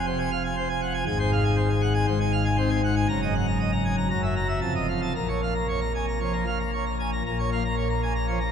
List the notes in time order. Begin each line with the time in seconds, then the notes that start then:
Already playing: F1 F2
0.06 C3 C5
0.19 G#5
0.31 F5
0.44 G#5
0.56 C5
0.69 G#5
0.81 F#5
0.94 G#5
1.06 G#1 G#2 G#5
1.19 C5
1.32 F5
1.44 G#5
1.57 C5
1.70 G#5
1.81 F#5
1.94 G#5
2.07 G#1 G#2 C5
2.20 G#5
2.32 F5
2.45 G#5
2.57 C4 C5
2.70 G#5
2.84 F#5
2.96 G#5
3.09 F#1 F#2 A#5
3.22 D#5
3.35 F#5
3.47 A#5
3.60 D#5
3.72 A#5
3.85 G#5
3.98 A#5
4.10 F#1 F#2 A#5
4.23 E5
4.36 A#5
4.49 E5
4.61 F1 F2 A5
4.75 D#5
4.88 F5
5.02 A5
5.16 A#1 A#2 A#5
5.29 C#5
5.42 F5
5.55 A#5
5.69 C#5
5.81 A#5
5.95 G#5
6.08 A#5
6.21 F3 C#5
6.33 A#5
6.46 F5
6.60 A#5
6.73 C#5
6.86 A#5
7.00 G#5
7.13 A#5
7.26 A#1 A#2 A#5
7.39 C#5
7.52 A#3 F5
7.65 A#5
7.77 C#5
7.90 A#5
8.03 G#5
8.16 A#5
8.28 F3 C#5
8.40 A#5